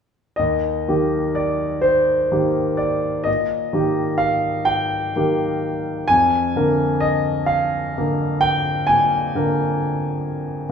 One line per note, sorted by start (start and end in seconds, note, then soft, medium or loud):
0.36 0.87 D#2 soft
0.36 1.36 D#5 medium
0.88 2.28 D#3 soft
0.88 2.28 A#3 soft
0.88 2.28 G4 soft
1.35 1.84 D5 medium
1.82 2.78 C5 medium
2.32 3.23 D#3 soft
2.32 3.23 A#3 soft
2.32 3.23 G4 soft
2.77 3.26 D5 medium
3.24 3.73 A#2 soft
3.24 4.20 D#5 medium
3.73 5.11 D#3 soft
3.73 5.11 A#3 soft
3.73 5.11 G4 soft
4.18 4.67 F5 medium
4.65 6.08 G5 medium
5.16 6.06 D#3 soft
5.16 6.06 A#3 soft
5.16 6.06 G4 soft
6.08 6.55 F2 soft
6.08 7.03 G#5 medium
6.56 7.92 D3 soft
6.56 7.92 A#3 soft
6.56 7.93 A#4 soft
7.00 7.49 D#5 medium
7.46 8.41 F5 medium
7.98 8.85 D3 soft
7.98 8.85 A#3 soft
7.98 8.85 A#4 soft
8.41 8.87 G5 medium
8.87 9.33 A#2 soft
8.87 10.72 G#5 medium
9.35 10.65 D3 soft
9.35 10.65 A#3 soft
9.35 10.65 A#4 soft